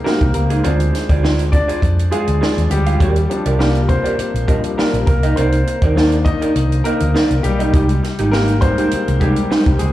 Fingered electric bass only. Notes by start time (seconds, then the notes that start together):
0.21 C2
0.36 C#2
0.65 D2
1.10 D2
1.83 F2
2.28 D2
2.57 D#2
2.71 D2
3.00 D#2
3.46 C2
4.18 muted fingered electric bass stroke
4.34 A#1
4.93 A#1
5.07 C2
5.37 C2
5.82 D#2
6.56 C2
7.01 D2
7.31 C2
7.44 B1
7.74 C2
8.19 G#1
8.93 muted fingered electric bass stroke
9.08 C2
9.67 C2
9.81 C#2